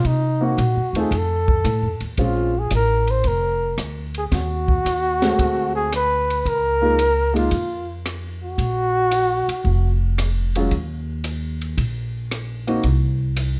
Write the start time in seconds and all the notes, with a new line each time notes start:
0.04 C3 D#4, kick, ride
0.41 A#3 C4 D#4 F#4
0.58 A#2, kick, hi-hat pedal, ride
0.76 F#2
0.93 D#2 A3 C4 D#4 F4, ride
0.99 G#4
1.11 F2, kick, ride
1.17 A4
1.48 kick
1.64 A2, kick, hi-hat pedal, ride
1.82 F2
2.00 D#2, ride
2.17 A#1 G#3 C4 C#4 F4, kick, ride
2.23 F4
2.59 G#4
2.71 A1, hi-hat pedal, ride
2.75 A#4
3.07 C5, ride
3.24 F1 A#4, kick, ride
3.78 D2, cross-stick, hi-hat pedal, ride
4.14 G#4, ride
4.32 D#2 F#4, kick, snare, ride
4.68 kick
4.85 D#2, hi-hat pedal, ride
5.22 G#3 A3 C4 F#4, snare, ride
5.39 D2, kick, ride
5.75 G#4
5.93 B4, cross-stick, hi-hat pedal, ride
6.30 ride
6.45 C#2 A#4, kick, ride
6.82 G#3 A#3 D#4 F4
6.99 hi-hat pedal, ride
7.33 G#3 A#3 D#4 F4, ride
7.51 F2, kick, ride
8.06 cross-stick, hi-hat pedal, ride
8.43 F#4
8.58 A#1, kick, ride
9.11 hi-hat pedal, ride
9.48 muted upright bass stroke, ride
9.64 F1, kick
10.18 cross-stick, hi-hat pedal, ride
10.55 F#3 G#3 C#4 F4, ride
10.71 D#2, kick, ride
11.24 hi-hat pedal, ride
11.61 ride
11.77 A#1, kick, ride
12.31 cross-stick, hi-hat pedal, ride
12.67 A#3 C4 D#4 F#4, ride
12.83 C2, kick, ride
13.37 hi-hat pedal, ride